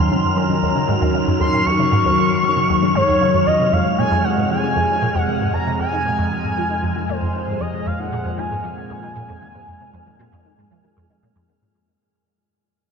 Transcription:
Already playing: F#2 D#3 F#3 C6 F6
0.11 C#3
0.24 F#2
0.37 D#3 A#5
0.49 C#3
0.62 D#2
0.75 C#3
0.88 G#2
1.01 D#2
1.14 C#3
1.27 F#2
1.40 D#2 C6
1.53 A#2
1.66 D#2 C#6
1.79 C#3
1.92 G#2
2.05 D#2
2.17 C#3
2.30 F#2
2.43 D#3
2.56 C#3
2.69 D#2
2.82 C#3
2.95 G#2 C#5
3.08 D#2
3.21 C#3
3.34 F#2
3.46 F2 C3 G#3 D#5
3.60 C3
3.72 F2 F5
3.85 D#3
3.98 A#2 G#5
4.11 F2
4.24 D#3 F#5
4.37 G#2
4.50 F3 G#5
4.63 D#3
4.76 F2
4.89 D#3
5.02 A#2
5.15 F2
5.20 F#5
5.28 D#3
5.41 G#2
5.53 F2 A#5
5.66 C3
5.79 F2 G#5
5.92 D#3
6.05 A#2
6.18 F2
6.31 D#3
6.44 G#2
6.57 F3
6.70 D#3
6.83 F2
6.96 D#3
7.09 A#2 C5
7.22 F2
7.34 D#3
7.47 G#2
7.60 F2 A#2 D#5
7.73 C3
7.86 F2 F5
7.99 D#3 F#5
8.12 A#2
8.25 F2
8.38 D#3 G#5
8.51 G#2
8.64 F3
8.77 D#3
8.90 F2
9.03 D#3
9.16 A#2
9.29 F2
9.42 D#3
9.55 G#2
9.67 F2
9.80 C3
9.93 F2
10.06 D#3
10.19 A#2
10.32 F2
10.45 D#3
10.58 G#2
10.71 F3
10.84 D#3
10.97 F2
11.10 D#3
11.23 A#2
11.36 F2
11.49 D#3
11.61 G#2

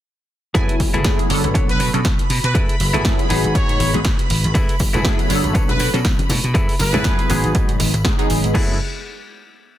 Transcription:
0.54 F#2 F#3 A3 B3 E4 G#4 A4 B4 G#5 B5, kick, closed hi-hat
0.69 closed hi-hat
0.80 F#1, kick, open hi-hat
0.94 F#1 F#3 A3 B3 E4 G#4 A4 B4, closed hi-hat
1.04 F#2 F#3 A3 B3 E4 G#4, kick, snare, closed hi-hat
1.19 closed hi-hat
1.29 F#1 F#3 B3 D4 A4 C#5, open hi-hat
1.44 F#1, muted clean electric guitar stroke, closed hi-hat
1.54 B1 D4 A4 B4 C#5, kick, closed hi-hat
1.69 B4, closed hi-hat
1.79 B2, muted clean electric guitar stroke, open hi-hat
1.93 B2 F#3 B3 C#4 D4 A4, muted clean electric guitar stroke, closed hi-hat
2.05 B1, kick, snare, closed hi-hat
2.19 closed hi-hat
2.30 B2, open hi-hat
2.44 B2 B4, closed hi-hat
2.54 F#2 E4 G#4 A4 B4, kick, closed hi-hat
2.69 closed hi-hat
2.80 F#1, open hi-hat
2.93 F#1 F#3 A3 B3 E4 G#4 A4 B4, closed hi-hat
3.05 F#2 F#3 A3 B3 E4 G#4, kick, snare, closed hi-hat
3.19 closed hi-hat
3.29 G#1 F#3 G#3 B3 D#4 F#4 G#4 B4, open hi-hat
3.44 G#1, closed hi-hat
3.55 G#2 C#5, kick, closed hi-hat
3.69 closed hi-hat
3.80 G#1, muted clean electric guitar stroke, open hi-hat
3.94 G#1 F#3 G#3 B3 D#4 G#4, muted clean electric guitar stroke, closed hi-hat
4.05 G#2, kick, snare, closed hi-hat
4.19 closed hi-hat
4.30 G#1, open hi-hat
4.44 G#1, closed hi-hat
4.54 F#2 E4 G#4 A4 B4, kick, closed hi-hat, tambourine
4.69 closed hi-hat, tambourine
4.79 F#1, kick, open hi-hat, tambourine
4.93 F#1 F#3 A3 B3 E4 G#4 A4 B4, closed hi-hat, tambourine, low conga
5.04 F#2 F#3 A3 B3 E4 G#4, kick, snare, closed hi-hat, tambourine
5.19 closed hi-hat, tambourine
5.29 F#1 F#3 B3 D4 A4 C#5, open hi-hat, tambourine
5.44 F#1, muted clean electric guitar stroke, closed hi-hat, tambourine
5.55 B1 D4 A4 B4 C#5, kick, closed hi-hat, tambourine
5.69 B4, closed hi-hat, tambourine, high conga, low conga
5.79 B2, muted clean electric guitar stroke, open hi-hat, tambourine
5.93 B2 F#3 B3 C#4 D4 A4, muted clean electric guitar stroke, closed hi-hat, tambourine
6.05 B1, kick, snare, closed hi-hat, tambourine
6.19 closed hi-hat, tambourine, high conga
6.29 B2, open hi-hat, tambourine, low conga
6.43 B2, closed hi-hat, tambourine
6.54 F#2 E4 G#4 A4 B4, kick, closed hi-hat, tambourine
6.69 open hi-hat, tambourine
6.79 F#1 B4, snare, open hi-hat, tambourine
6.94 F#1 F#3 A3 B3 E4 G#4 A4 B4, closed hi-hat, tambourine, low conga
7.04 F#2 F#3 A3 B3 E4 G#4, kick, snare, closed hi-hat, tambourine
7.19 closed hi-hat, tambourine
7.29 G#1 F#3 G#3 B3 D#4 F#4 G#4 B4, open hi-hat, tambourine, high conga
7.44 G#1, closed hi-hat, tambourine
7.55 G#2, kick, closed hi-hat, tambourine
7.69 closed hi-hat, tambourine
7.80 G#1, muted clean electric guitar stroke, open hi-hat, tambourine
7.94 G#1, muted clean electric guitar stroke, closed hi-hat, tambourine
8.05 G#2 F#3 G#3 B3 D#4 G#4, kick, snare, closed hi-hat, tambourine
8.18 F#3 G#3 B3 D#4 G#4, closed hi-hat, tambourine
8.30 G#1, open hi-hat, tambourine
8.44 G#1, closed hi-hat, tambourine
8.54 F#2 F#3 A3 B3 E4 G#4 A4 B4, kick, crash

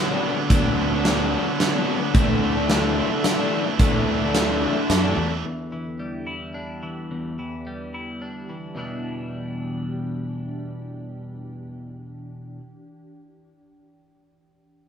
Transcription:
Already playing: D3 F#3 D4 B4 F#5
0.08 F#3 B3 D4
0.22 D3 F#3 B3 D4
0.36 F#3 B3 D4, muted overdriven electric guitar stroke
0.49 D2 D3 F#3 B3 D4, kick, closed hi-hat
0.64 F#3 B3 D4
0.77 D3 F#3 B3 D4
0.90 F#3 B3 D4
1.04 D3 F#3 B3 D4, snare, closed hi-hat
1.31 D3 F#3 B3 D4
1.45 F#3 B3 D4, muted overdriven electric guitar stroke
1.59 D3 F#3 B3 D4, snare, closed hi-hat
1.74 F#3 B3 D4
1.86 D3 F#3 B3 D4
2.00 F#3 B3 D4, muted overdriven electric guitar stroke
2.14 D2 D3 E3 A3 D4 A4 E5, kick, closed hi-hat
2.28 E3 A3 D4
2.41 D3 E3 A3 D4
2.56 E3 A3 D4
2.69 D3 E3 A3 D4, snare, closed hi-hat
2.96 D3 E3 A3 D4
3.10 E3 A3 D4, muted overdriven electric guitar stroke
3.23 D3 E3 A3 D4, snare, closed hi-hat
3.37 E3 A3 D4
3.52 D3 E3 A3 D4
3.64 E3 A3 D4, muted overdriven electric guitar stroke
3.79 D2 D3 E3 A3 D4, kick, closed hi-hat
3.93 E3 A3 D4
4.06 D3 E3 A3 D4
4.20 E3 A3 D4
4.34 D3 E3 A3 D4, snare, closed hi-hat
4.61 D3 E3 A3 D4
4.75 E3 A3 D4, muted overdriven electric guitar stroke
4.89 F#2 D3 E3 A3 D4, snare, closed hi-hat
5.02 E3 A3 D4
5.16 E2 D3 E3 A3 D4
5.30 E3 A3 D4, muted overdriven electric guitar stroke
5.45 E2 D3 G4
5.72 E3
5.99 G3
6.27 E4
6.54 D4
6.83 E3
7.11 E2
7.39 E3
7.67 G3
7.94 E4
8.22 D4
8.49 E3
8.75 E2 B2 E3 G3 D4 E4 G4

